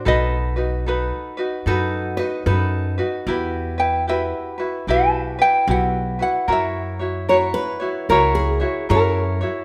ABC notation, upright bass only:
X:1
M:4/4
L:1/8
Q:"Swing" 1/4=75
K:Em
V:1 name="Upright bass" clef=bass
B,,,4 F,,2 F,,2 | E,,4 B,,,2 B,,,2 | F,,4 ^C,,2 F,,2 |]